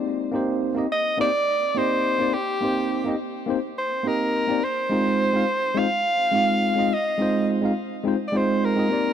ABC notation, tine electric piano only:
X:1
M:4/4
L:1/16
Q:1/4=105
K:Cm
V:1 name="Tine electric piano"
[B,CEGd]2 [B,CEGc]3 [B,CEGe] z2 [B,CEGc] z3 [B,CEGe]3 [B,CEGd] | z2 [B,CEGc]3 [B,CEGe] z2 [B,CEGc] z3 [B,CEGe]3 [B,CEGd] | z2 [A,CEFc]3 [A,CEFf] z2 [A,CEFc] z3 [A,CEFf]3 [A,CEFe] | z2 [A,CEFc]3 [A,CEFf] z2 [A,CEFc] z [A,CEFc]3 [A,CEFe] [B,CEGd]2 |]